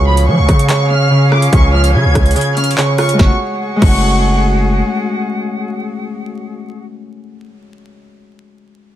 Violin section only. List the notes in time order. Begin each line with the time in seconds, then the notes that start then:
0.07 B5
0.28 C#6
0.69 C#6
0.91 F6
1.32 D6
1.53 C#6
1.73 F6
1.94 G#6
2.36 G#6
2.57 F6
2.77 C#6
2.99 C#6
3.19 C#6
3.82 C#6